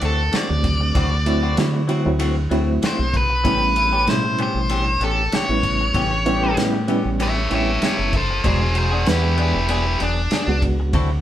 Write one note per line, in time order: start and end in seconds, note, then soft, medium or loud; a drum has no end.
0.00 0.32 D2 medium
0.00 0.21 E3 medium
0.00 0.21 A3 medium
0.00 0.22 C4 medium
0.00 0.22 F#4 medium
0.00 ride medium
0.05 0.34 A4 loud
0.32 0.49 E3 medium
0.32 0.49 A3 medium
0.32 0.48 C4 medium
0.32 0.48 F#4 medium
0.32 snare loud
0.32 ride medium
0.36 1.56 D5 loud
0.49 0.93 D2 medium
0.49 1.04 F#3 medium
0.49 1.04 A3 medium
0.49 1.04 C4 medium
0.49 1.04 D4 medium
0.49 muted clean electric guitar stroke soft
0.64 muted clean electric guitar stroke soft
0.64 kick medium
0.64 ride medium
0.81 muted clean electric guitar stroke soft
0.95 1.55 D2 loud
0.95 1.12 E3 medium
0.95 1.13 F#3 medium
0.95 1.12 A3 medium
0.95 1.11 C4 medium
0.95 1.12 C4 medium
0.95 1.12 D4 medium
0.95 1.12 E4 medium
0.95 1.11 F#4 loud
0.95 1.13 F#4 medium
0.95 kick loud
0.95 ride medium
1.12 muted clean electric guitar stroke medium
1.26 1.49 F#3 medium
1.26 1.90 F#3 medium
1.26 1.49 A3 medium
1.26 1.89 C4 medium
1.26 1.49 C4 medium
1.26 1.89 D4 medium
1.26 1.49 E4 loud
1.26 1.90 E4 medium
1.26 1.90 F#4 loud
1.26 muted clean electric guitar stroke soft
1.26 ride medium
1.43 1.56 A3 soft
1.43 1.57 C4 medium
1.43 1.57 F#4 medium
1.57 2.04 D3 medium
1.57 1.81 F#3 medium
1.57 1.81 A3 medium
1.57 1.81 C4 medium
1.57 1.81 E4 loud
1.57 muted clean electric guitar stroke soft
1.57 snare loud
1.57 ride medium
1.74 muted clean electric guitar stroke medium
1.88 2.08 E3 medium
1.88 2.01 F#3 loud
1.88 2.09 A3 medium
1.88 2.01 A3 medium
1.88 2.01 C4 medium
1.88 2.09 C4 medium
1.88 2.01 E4 loud
1.88 2.09 F#4 medium
1.88 ride medium
2.05 2.49 D2 medium
2.05 2.38 F#3 medium
2.05 2.39 A3 medium
2.05 2.39 C4 medium
2.05 2.39 E4 loud
2.19 2.37 E3 medium
2.19 2.36 A3 medium
2.19 2.36 C4 medium
2.19 2.35 F#4 loud
2.19 ride medium
2.37 muted clean electric guitar stroke medium
2.50 2.81 D2 medium
2.50 2.71 E3 medium
2.50 3.17 F#3 loud
2.50 2.71 A3 medium
2.50 3.17 A3 medium
2.50 3.17 C4 medium
2.50 2.72 C4 medium
2.50 3.17 E4 loud
2.50 2.72 F#4 medium
2.50 ride medium
2.82 2.99 E3 medium
2.82 2.99 A3 medium
2.82 2.98 C4 medium
2.82 2.98 F#4 medium
2.82 snare loud
2.82 ride medium
2.86 3.15 C5 medium
2.99 3.43 B1 medium
2.99 muted clean electric guitar stroke soft
3.13 4.10 B4 medium
3.13 muted clean electric guitar stroke soft
3.13 kick medium
3.13 ride medium
3.30 muted clean electric guitar stroke soft
3.44 4.04 A1 loud
3.44 3.62 E3 medium
3.44 3.90 G3 medium
3.44 3.61 G3 medium
3.44 3.61 A3 medium
3.44 3.61 B3 medium
3.44 3.90 B3 medium
3.44 3.61 B3 medium
3.44 3.61 C#4 medium
3.44 3.90 C#4 medium
3.44 3.62 C#4 medium
3.44 3.90 E4 medium
3.44 3.61 G4 medium
3.44 3.60 G4 medium
3.44 kick loud
3.44 ride medium
3.61 muted clean electric guitar stroke soft
3.76 4.39 E3 medium
3.76 4.39 G3 medium
3.76 4.39 A3 medium
3.76 4.39 C#4 medium
3.76 4.39 E4 medium
3.76 muted clean electric guitar stroke soft
3.76 ride medium
3.93 4.07 B3 soft
3.93 4.07 C#4 medium
3.93 4.07 G4 medium
4.07 4.53 A2 medium
4.07 4.96 B2 medium
4.07 4.96 G3 medium
4.07 4.96 C#4 medium
4.07 4.96 E4 medium
4.07 4.39 C5 medium
4.07 muted clean electric guitar stroke soft
4.07 snare loud
4.07 ride medium
4.25 muted clean electric guitar stroke soft
4.38 4.59 E3 medium
4.38 4.59 B3 medium
4.38 4.59 C#4 medium
4.38 4.60 G4 medium
4.38 ride medium
4.43 5.01 C5 medium
4.55 4.98 A1 medium
4.69 4.87 E3 medium
4.69 4.87 B3 medium
4.69 4.87 C#4 medium
4.69 4.86 G4 medium
4.69 ride medium
4.87 muted clean electric guitar stroke soft
5.00 5.30 A1 medium
5.00 5.21 E3 medium
5.00 5.22 B3 medium
5.00 5.22 C#4 medium
5.00 5.22 G4 medium
5.00 5.33 A4 medium
5.00 ride medium
5.32 5.50 E3 medium
5.32 5.50 B3 medium
5.32 5.49 C#4 medium
5.32 5.49 G4 medium
5.32 snare loud
5.32 ride medium
5.36 6.56 C#5 loud
5.49 5.92 A1 medium
5.49 6.04 G3 medium
5.49 6.03 B3 medium
5.49 6.04 C#4 medium
5.49 6.04 E4 medium
5.49 muted clean electric guitar stroke soft
5.63 muted clean electric guitar stroke soft
5.63 kick medium
5.63 ride medium
5.81 muted clean electric guitar stroke soft
5.94 6.54 A1 loud
5.94 6.12 E3 medium
5.94 6.12 G3 medium
5.94 6.11 A3 medium
5.94 6.12 B3 medium
5.94 6.11 B3 medium
5.94 6.12 C#4 medium
5.94 6.11 C#4 medium
5.94 6.12 G4 medium
5.94 6.11 G4 medium
5.94 kick loud
5.94 ride medium
6.12 muted clean electric guitar stroke medium
6.24 6.49 G3 medium
6.24 6.89 G3 loud
6.24 6.88 A3 medium
6.24 6.88 B3 medium
6.24 6.49 B3 medium
6.24 6.88 C#4 medium
6.24 6.49 C#4 medium
6.24 6.49 E4 loud
6.24 6.89 G4 loud
6.24 muted clean electric guitar stroke soft
6.24 ride medium
6.43 6.57 B3 soft
6.43 6.57 C#4 medium
6.43 6.57 G4 medium
6.57 7.03 A2 medium
6.57 6.80 G3 medium
6.57 6.80 B3 medium
6.57 6.80 C#4 medium
6.57 6.80 E4 loud
6.57 muted clean electric guitar stroke soft
6.57 snare loud
6.57 ride medium
6.74 muted clean electric guitar stroke medium
6.88 7.08 E3 medium
6.88 7.00 G3 loud
6.88 7.00 B3 medium
6.88 7.08 B3 medium
6.88 7.00 C#4 medium
6.88 7.09 C#4 medium
6.88 7.00 E4 medium
6.88 7.09 G4 medium
6.88 ride medium
7.05 7.48 A1 medium
7.05 7.38 G3 medium
7.05 7.38 B3 medium
7.05 7.38 C#4 medium
7.05 7.38 G4 medium
7.19 7.37 E3 medium
7.19 7.36 B3 medium
7.19 7.36 C#4 medium
7.19 7.35 G4 medium
7.19 7.52 C#5 medium
7.19 7.52 E5 loud
7.19 ride medium
7.36 muted clean electric guitar stroke soft
7.50 7.81 A1 medium
7.50 7.70 E3 medium
7.50 8.16 G3 medium
7.50 8.16 B3 medium
7.50 7.71 B3 medium
7.50 8.17 C#4 medium
7.50 7.71 C#4 medium
7.50 8.17 E4 medium
7.50 7.71 G4 medium
7.50 ride medium
7.54 7.82 C#5 medium
7.54 7.83 E5 medium
7.81 7.99 E3 medium
7.81 7.98 B3 medium
7.81 7.98 C#4 medium
7.81 7.97 G4 medium
7.81 snare loud
7.81 ride medium
7.86 8.13 C#5 medium
7.86 8.14 E5 medium
7.99 8.42 F#1 medium
7.99 muted clean electric guitar stroke soft
8.13 8.44 A4 medium
8.13 muted clean electric guitar stroke soft
8.13 kick loud
8.13 ride medium
8.17 8.46 C5 loud
8.30 muted clean electric guitar stroke soft
8.44 9.03 E1 loud
8.44 8.89 B2 medium
8.44 8.61 F#3 medium
8.44 8.60 G#3 medium
8.44 8.89 G#3 medium
8.44 8.61 B3 medium
8.44 8.61 D4 medium
8.44 8.89 D4 medium
8.44 8.61 D4 medium
8.44 8.60 E4 medium
8.44 8.89 F#4 medium
8.44 8.61 F#4 medium
8.44 8.60 G#4 medium
8.44 8.75 G#4 medium
8.44 kick loud
8.44 ride medium
8.48 8.77 C5 loud
8.62 muted clean electric guitar stroke soft
8.74 9.37 G#3 medium
8.74 9.38 D4 medium
8.74 9.38 E4 medium
8.74 9.38 F#4 medium
8.74 9.06 G#4 medium
8.74 9.38 F#5 medium
8.74 muted clean electric guitar stroke soft
8.74 ride medium
8.78 9.07 C5 medium
8.92 9.06 B3 soft
8.92 9.06 D4 medium
8.92 9.06 G#4 medium
9.06 9.52 E2 medium
9.06 9.95 G#3 medium
9.06 9.95 B3 medium
9.06 9.95 D4 medium
9.06 9.37 E4 medium
9.06 9.95 B4 medium
9.06 muted clean electric guitar stroke soft
9.06 snare loud
9.06 ride medium
9.11 9.39 G4 medium
9.24 muted clean electric guitar stroke soft
9.37 9.57 F#3 medium
9.37 9.58 B3 medium
9.37 9.58 D4 medium
9.37 9.69 E4 medium
9.37 9.59 G#4 medium
9.37 ride medium
9.42 9.70 G4 medium
9.55 9.98 E1 loud
9.69 9.86 F#3 medium
9.69 9.86 B3 medium
9.69 9.85 D4 medium
9.69 10.00 E4 medium
9.69 9.85 G#4 medium
9.69 ride medium
9.73 10.01 G4 medium
9.86 muted clean electric guitar stroke soft
10.00 10.30 E1 medium
10.00 10.20 F#3 medium
10.00 10.20 B3 medium
10.00 10.21 D4 medium
10.00 10.62 D4 loud
10.00 10.21 G#4 medium
10.00 ride medium
10.31 10.48 F#3 medium
10.31 10.49 B3 medium
10.31 10.48 D4 medium
10.31 10.47 G#4 medium
10.31 snare loud
10.31 ride medium
10.47 10.91 C#2 medium
10.47 10.94 G#3 medium
10.47 10.94 B3 medium
10.47 10.94 D4 medium
10.47 10.94 F#4 medium
10.47 muted clean electric guitar stroke soft
10.62 muted clean electric guitar stroke soft
10.62 kick medium
10.62 ride medium
10.80 muted clean electric guitar stroke soft
10.93 11.21 D2 loud
10.93 11.11 F#3 medium
10.93 11.10 F#3 medium
10.93 11.09 C4 medium
10.93 11.11 C4 medium
10.93 11.09 D4 medium
10.93 11.09 E4 medium
10.93 11.11 E4 medium
10.93 11.10 F#4 medium
10.93 11.10 A4 loud
10.93 kick loud
10.93 ride medium
11.11 muted clean electric guitar stroke medium